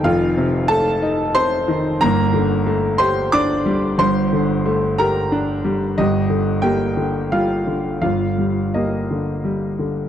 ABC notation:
X:1
M:3/4
L:1/8
Q:1/4=90
K:Eblyd
V:1 name="Grand piano"
[Ff]2 [Aa]2 [cc']2 | [B,b]3 [cc'] [dd']2 | [cc']3 [Bb] z2 | [Ge]2 [Gg]2 [Ff]2 |
[Ff]2 [Ge]2 z2 |]
V:2 name="Grand piano" clef=bass
[F,,,F,,E,] C, A, E C E, | [G,,,G,,] D, A, G D G, | [G,,,G,,] D, A, G D G, | [G,,,G,,] D, B, D, G, D, |
[G,,,G,,] G, B, D, G, D, |]